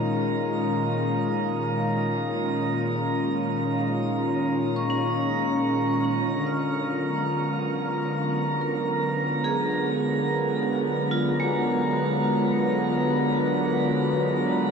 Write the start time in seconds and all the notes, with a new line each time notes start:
Already playing: A#2 D#3 G#3 C#4 F4 A#4 D#5 A#5
4.76 C#6
4.90 C#4
6.20 D3
6.47 F6
6.60 F#3
6.94 G#3 B3
8.61 A#4
9.44 G#4
11.11 F4
11.40 G#3